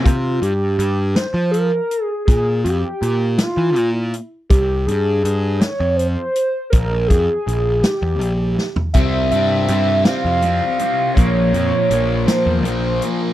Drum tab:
HH |x-x-x-x-x-x-|x-x-x-x-x-x-|x-x-x-x-x-x-|x-x-x-x-x---|
SD |------o-----|------o-----|------o-----|------o---o-|
FT |------------|------------|------------|-----------o|
BD |o-----------|o-----------|o-----------|o-o---------|

HH |x-x-x-x-x-x-|x-x-x-x-x-x-|
SD |------o-----|------o-----|
FT |------------|------------|
BD |o-----------|o-----------|